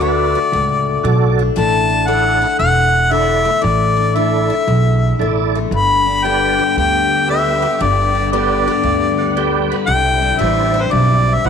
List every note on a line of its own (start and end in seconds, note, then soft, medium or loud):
0.00 0.34 D2 medium
0.00 1.56 D3 medium
0.00 1.04 A3 medium
0.00 1.39 D4 medium
0.00 0.34 F#4 medium
0.00 0.39 F#4 medium
0.00 0.39 A4 medium
0.00 0.40 B4 medium
0.00 1.34 D5 medium
0.35 1.54 F#4 medium
0.52 0.96 C#2 medium
0.52 1.55 A2 medium
1.03 1.48 B1 medium
1.03 1.57 A3 medium
1.03 1.43 F#4 medium
1.03 1.43 A4 medium
1.03 1.43 D5 loud
1.39 1.57 D4 medium
1.56 2.42 A1 medium
1.56 2.08 A2 medium
1.56 2.07 D3 medium
1.56 2.08 A3 medium
1.56 1.89 D4 medium
1.56 2.41 E4 medium
1.56 2.08 A5 loud
1.90 3.96 D4 medium
2.06 3.10 D3 medium
2.06 3.44 A3 medium
2.06 2.47 E4 medium
2.06 2.47 A4 medium
2.06 2.47 D5 medium
2.06 2.58 F#5 loud
2.42 4.49 E4 medium
2.59 3.46 E1 medium
2.59 3.63 E2 medium
2.59 3.13 F#5 loud
3.11 4.14 D3 medium
3.11 3.51 E4 medium
3.11 3.51 A4 medium
3.11 3.51 D5 medium
3.11 3.64 E5 loud
3.45 3.61 A3 medium
3.62 4.50 A1 medium
3.62 4.15 A2 medium
3.62 4.17 D5 medium
3.97 6.06 D4 medium
4.15 5.20 D3 medium
4.15 5.54 A3 medium
4.15 4.55 E4 medium
4.15 4.55 A4 medium
4.15 4.55 D5 medium
4.15 5.53 E5 medium
4.50 5.72 E4 medium
4.67 5.12 B1 medium
4.67 5.72 E2 medium
5.19 5.63 A1 medium
5.19 6.24 D3 medium
5.19 5.59 E4 medium
5.19 5.59 A4 medium
5.19 5.59 D5 medium
5.55 5.70 A3 medium
5.71 6.58 G1 medium
5.71 6.77 G2 medium
5.71 11.49 D3 medium
5.71 11.49 G3 medium
5.71 9.84 B3 medium
5.71 9.85 G4 medium
5.71 6.27 B5 loud
6.06 8.15 D4 medium
6.24 7.28 D3 medium
6.24 7.61 B3 medium
6.24 6.64 G4 medium
6.24 6.64 B4 medium
6.24 6.64 D5 medium
6.24 6.76 G5 loud
6.59 8.67 G4 medium
6.77 7.63 D2 medium
6.77 7.79 G2 medium
6.77 7.25 G5 loud
7.28 8.32 D3 medium
7.28 7.68 G4 medium
7.28 7.68 B4 medium
7.28 7.68 E5 medium
7.28 7.83 E5 loud
7.62 7.78 B3 medium
7.80 8.67 G1 medium
7.80 8.82 G2 medium
7.80 8.31 D5 medium
8.15 9.90 D4 medium
8.32 9.36 D3 medium
8.32 9.70 B3 medium
8.32 8.72 G4 medium
8.32 8.72 B4 medium
8.32 9.66 D5 medium
8.32 8.72 D5 medium
8.68 9.87 G4 medium
8.84 9.70 D2 medium
8.84 9.86 G2 medium
9.18 9.35 F#5 medium
9.36 10.38 D3 medium
9.36 9.76 G4 medium
9.36 9.76 B4 medium
9.36 9.76 D5 loud
9.36 9.68 G5 medium
9.70 9.87 B3 medium
9.70 9.87 B5 medium
9.86 10.31 C2 medium
9.86 10.40 C3 medium
9.86 11.49 C4 medium
9.86 11.49 E4 medium
9.86 10.41 G5 loud
10.22 11.49 D4 medium
10.39 10.85 A1 medium
10.39 11.49 E3 medium
10.39 11.49 G3 medium
10.39 10.80 E4 medium
10.39 10.80 C5 medium
10.39 10.81 D5 medium
10.39 10.82 E5 loud
10.74 11.49 E4 medium
10.80 10.84 B4 medium
10.80 10.93 C5 medium
10.91 11.37 B1 medium
10.91 11.49 G2 medium
10.91 11.36 D5 loud
11.34 11.48 E5 medium
11.44 11.49 C2 medium
11.44 11.49 B2 medium
11.44 11.49 E4 medium
11.44 11.49 C5 medium
11.44 11.49 E5 medium
11.44 11.49 F#5 loud